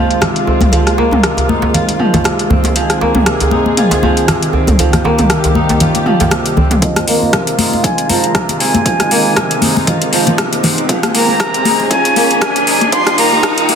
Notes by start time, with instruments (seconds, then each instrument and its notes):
Already playing: kora C3 F3 A#3 C4 D#4 F4, string section D#3 G#3 C4 F4
0.11 closed hi-hat
0.21 kora C3, cross-stick, closed hi-hat, muted conga, low conga
0.36 closed hi-hat
0.47 kora C4, djembe tone
0.61 closed hi-hat, mid tom, muted conga, high conga, djembe bass
0.72 kora F3, string section A#3, closed hi-hat, djembe bass
0.87 cross-stick, closed hi-hat
0.98 kora A#3, djembe slap
1.11 mid tom, muted conga, djembe tone
1.23 kora C3, cross-stick, closed hi-hat
1.37 closed hi-hat, djembe tone
1.49 kora D#4, high conga
1.62 djembe slap, high conga
1.74 kora F4, closed hi-hat, low conga
1.89 closed hi-hat, muted conga
1.99 kora F3, mid tom
2.14 closed hi-hat, djembe slap, high conga, low conga
2.24 kora C3, cross-stick, closed hi-hat, muted conga
2.39 closed hi-hat
2.50 kora C4, high conga, djembe bass, low conga
2.64 closed hi-hat, muted conga, djembe slap
2.76 string section D#3 C4 G#4, kora F3, closed hi-hat
2.90 cross-stick, closed hi-hat
3.01 kora A#3, djembe slap
3.15 mid tom, muted conga, djembe tone, high conga
3.26 kora C3, cross-stick, closed hi-hat
3.40 closed hi-hat, djembe tone
3.51 kora D#4, muted conga, high conga
3.66 high conga
3.77 kora F4, closed hi-hat, mid tom
3.91 closed hi-hat, djembe slap, muted conga
4.03 kora F3, high conga, djembe tone
4.17 closed hi-hat
4.28 kora C3, cross-stick, closed hi-hat, muted conga, low conga
4.42 closed hi-hat
4.53 kora C4, djembe tone
4.67 closed hi-hat, mid tom, muted conga, high conga, djembe bass
4.79 kora F3, string section G3 A#3 G4, closed hi-hat, djembe bass
4.93 cross-stick, closed hi-hat, high conga, low conga
5.04 kora A#3, djembe slap, djembe tone
5.18 closed hi-hat, mid tom, muted conga, djembe tone
5.30 kora C3, cross-stick, closed hi-hat
5.44 closed hi-hat, djembe tone
5.55 kora D#4, high conga
5.69 closed hi-hat, djembe slap, high conga
5.80 kora F4, closed hi-hat, low conga
5.95 closed hi-hat, muted conga
6.06 kora F3, mid tom
6.20 closed hi-hat, djembe slap, high conga, low conga
6.31 kora C3, cross-stick, closed hi-hat, muted conga
6.46 closed hi-hat
6.57 kora C4, high conga, djembe bass, low conga
6.71 closed hi-hat, mid tom, djembe slap, muted conga
6.82 string section D#3 G#3 C4 F4, kora F3, flute D#5, kick, closed hi-hat, riser
6.96 cross-stick, closed hi-hat, muted conga, high conga
7.08 kora A#3, open hi-hat
7.23 high conga
7.33 kora C3, flute F5, kick, cross-stick, closed hi-hat, muted conga
7.47 closed hi-hat
7.59 kora D#4, open hi-hat, high conga
7.73 muted conga, high conga
7.84 kora F4, flute G#5, kick, closed hi-hat
7.98 closed hi-hat
8.09 kora F3, flute A#5, open hi-hat, muted conga, high conga
8.24 closed hi-hat
8.35 kora C3, kick, cross-stick, closed hi-hat
8.49 closed hi-hat, muted conga
8.60 kora C4, flute G#5, open hi-hat
8.74 closed hi-hat, high conga
8.85 kora F3, string section D#4, kick, closed hi-hat
9.00 cross-stick, closed hi-hat, muted conga
9.11 kora A#3, open hi-hat
9.36 kora C3, kick, cross-stick, closed hi-hat, muted conga
9.51 closed hi-hat
9.62 kora D#4, open hi-hat, high conga
9.77 muted conga, high conga
9.87 kora F4, kick, closed hi-hat, low conga
10.02 closed hi-hat
10.13 kora F3, open hi-hat, muted conga
10.27 closed hi-hat, high conga, low conga
10.38 kora C3, kick, cross-stick, closed hi-hat
10.53 closed hi-hat, muted conga
10.63 kora C4, open hi-hat, high conga, low conga
10.78 closed hi-hat
10.89 string section D#3 G#4, kora F3, kick, closed hi-hat
11.03 cross-stick, closed hi-hat, muted conga, high conga
11.15 kora A#3, flute A#5, open hi-hat
11.28 high conga
11.40 kora C3, kick, cross-stick, closed hi-hat, muted conga
11.54 closed hi-hat
11.65 kora D#4, open hi-hat, high conga
11.80 muted conga, high conga
11.91 kora F3, flute G#5, kick, closed hi-hat
12.05 closed hi-hat
12.16 kora A#3, open hi-hat, muted conga, high conga
12.31 closed hi-hat
12.41 kora C3, flute G#5, kick, cross-stick, closed hi-hat
12.56 closed hi-hat, muted conga
12.67 kora D#4, open hi-hat
12.81 closed hi-hat, high conga
12.92 kora F3, string section G3 A#3 G4, flute C6, kick, closed hi-hat
13.07 cross-stick, closed hi-hat, muted conga
13.18 kora A#3, flute A#5, open hi-hat
13.32 high conga
13.43 kick, cross-stick, closed hi-hat, muted conga
13.58 closed hi-hat
13.69 kora A#3, open hi-hat, high conga